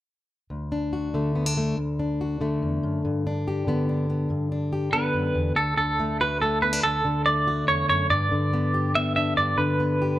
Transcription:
0.50 1.76 D2 soft
0.72 1.35 D4 soft
0.93 1.75 F#4 soft
1.14 2.39 D3 medium
1.14 1.56 A3 soft
1.35 1.46 B3 soft
1.46 1.77 D4 soft
1.57 1.75 A3 soft
1.77 2.62 D2 soft
1.99 3.26 D4 soft
2.21 3.02 F#4 soft
2.41 3.66 D3 medium
2.41 3.02 A3 soft
2.62 2.83 E2 soft
2.83 3.04 F#2 medium
3.05 4.28 G2 medium
3.27 3.89 D4 soft
3.48 4.29 G4 soft
3.67 4.92 D3 medium
3.67 4.08 B3 soft
3.89 4.51 D4 soft
4.10 4.28 B3 soft
4.30 5.14 G2 medium
4.52 5.54 D4 soft
4.73 5.54 G4 soft
4.93 5.76 D3 medium
4.93 5.54 B3 medium
4.93 5.56 B4 medium
5.14 5.34 F#2 medium
5.35 5.56 E2 medium
5.56 6.82 D2 medium
5.56 5.76 A4 medium
5.77 7.04 D3 soft
5.77 6.20 A4 medium
6.00 6.41 A3 soft
6.21 6.81 F#4 medium
6.21 6.41 B4 medium
6.42 6.81 A3 soft
6.42 6.62 A4 medium
6.62 6.73 B3 soft
6.62 6.82 B4 medium
6.73 6.83 D4 soft
6.83 7.68 D2 medium
6.83 7.23 A4 medium
7.05 8.30 D3 soft
7.26 8.08 A3 soft
7.26 7.65 D5 medium
7.47 8.08 F#4 medium
7.68 7.89 E2 soft
7.68 7.88 C#5 medium
7.89 8.10 F#2 soft
7.89 8.10 C#5 medium
8.10 9.34 G2 medium
8.10 8.95 D5 medium
8.32 9.57 D3 soft
8.53 8.96 B3 soft
8.74 9.35 G4 medium
8.95 9.79 B3 soft
8.95 9.15 E5 medium
9.16 9.35 D4 soft
9.16 9.37 E5 medium
9.37 10.19 G2 medium
9.37 9.57 D5 medium
9.58 10.19 D3 medium
9.58 10.19 B4 medium
9.80 10.19 B3 soft
10.02 10.19 G4 medium

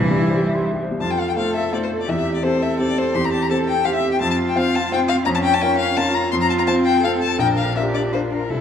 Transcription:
0.00 0.98 C2 medium
0.00 0.15 G2 soft
0.00 0.62 E3 loud
0.00 0.80 G3 medium
0.00 0.63 E4 medium
0.10 0.24 G3 medium
0.19 0.33 E4 medium
0.29 0.43 C5 medium
0.37 0.51 G4 medium
0.46 0.61 E5 medium
0.55 0.69 C6 medium
0.65 0.79 E5 medium
0.73 0.88 G4 soft
0.83 0.97 C5 medium
0.91 1.01 G3 soft
0.99 1.35 F2 medium
0.99 1.34 F4 medium
0.99 2.12 A4 medium
0.99 1.12 A5 medium
1.11 1.21 G5 medium
1.20 1.28 F5 medium
1.29 1.33 G5 medium
1.36 1.69 A3 medium
1.36 1.69 F4 medium
1.36 2.07 A4 medium
1.36 1.69 C5 medium
1.36 1.55 F5 medium
1.56 1.73 E5 medium
1.72 2.05 A3 medium
1.72 2.05 F4 medium
1.72 2.06 C5 medium
1.72 1.77 D5 medium
1.83 1.90 C5 medium
2.01 2.11 D5 medium
2.08 2.43 E2 medium
2.08 4.20 C4 medium
2.08 2.43 G4 medium
2.08 2.17 E5 medium
2.18 2.34 E5 medium
2.34 2.45 D5 medium
2.43 2.76 C4 medium
2.43 2.76 G4 medium
2.43 3.16 A4 medium
2.43 2.63 C5 medium
2.43 2.76 C5 medium
2.62 2.79 E5 medium
2.79 3.11 C4 medium
2.79 3.11 G4 medium
2.79 3.11 C5 medium
2.79 3.00 D5 medium
2.98 3.16 C5 medium
3.15 3.49 E2 medium
3.15 3.51 G4 medium
3.15 3.26 C6 loud
3.25 3.32 A#5 medium
3.33 3.44 A5 medium
3.42 3.50 A#5 medium
3.49 3.82 C4 medium
3.49 3.82 G4 medium
3.49 3.86 A4 medium
3.49 3.82 C5 medium
3.49 3.57 A5 loud
3.69 3.87 G5 loud
3.84 4.17 C4 medium
3.84 4.20 G4 medium
3.84 4.17 G4 medium
3.84 4.17 C5 medium
3.84 3.94 F5 loud
3.95 4.11 E5 loud
4.12 4.20 G5 medium
4.20 4.55 F2 medium
4.20 5.24 C4 medium
4.20 5.27 F4 loud
4.20 4.29 A5 loud
4.31 4.37 A5 medium
4.49 4.59 G5 medium
4.56 4.87 C4 medium
4.56 4.87 F4 medium
4.56 4.87 C5 medium
4.56 4.77 F5 loud
4.75 4.91 A5 loud
4.92 5.22 C4 medium
4.92 5.23 F4 medium
4.92 5.23 C5 medium
4.92 5.00 G5 loud
5.08 5.15 F5 loud
5.25 5.60 F2 medium
5.25 5.95 C#4 loud
5.25 6.34 C#4 medium
5.25 5.29 A#5 loud
5.34 5.38 A5 loud
5.43 5.55 G5 loud
5.53 5.63 A5 loud
5.61 5.93 C#4 medium
5.61 5.93 F4 medium
5.61 5.93 A#4 medium
5.61 5.78 G5 loud
5.78 5.98 F5 loud
5.95 6.28 C#4 medium
5.95 6.30 F4 medium
5.95 6.28 F4 medium
5.95 6.29 A#4 medium
5.95 6.16 A5 loud
6.14 6.31 A#5 loud
6.31 6.67 F2 medium
6.31 7.39 C4 medium
6.31 7.01 F4 loud
6.31 6.35 C6 loud
6.41 6.49 A#5 loud
6.50 6.53 A5 loud
6.58 6.62 A#5 medium
6.67 6.99 C4 medium
6.67 6.99 F4 medium
6.67 7.00 C5 medium
6.67 6.74 A5 loud
6.86 7.03 G5 loud
7.01 7.36 C4 medium
7.01 7.36 F4 medium
7.01 7.40 A4 medium
7.01 7.11 F5 loud
7.05 7.36 C5 medium
7.22 7.39 A5 loud
7.38 7.73 A#1 medium
7.38 8.45 D4 medium
7.38 7.75 A#4 medium
7.38 7.47 G5 loud
7.58 7.75 F5 medium
7.75 8.08 D4 medium
7.75 8.09 F4 medium
7.75 8.13 G4 medium
7.75 8.09 A#4 medium
7.75 7.83 E5 medium
7.94 8.01 D5 medium
8.12 8.46 D4 soft
8.12 8.49 F4 medium
8.12 8.47 F4 soft
8.12 8.46 A#4 soft
8.12 8.20 C5 medium
8.32 8.51 A#4 medium
8.49 8.61 C2 medium
8.49 8.61 E4 medium
8.49 8.61 A4 medium

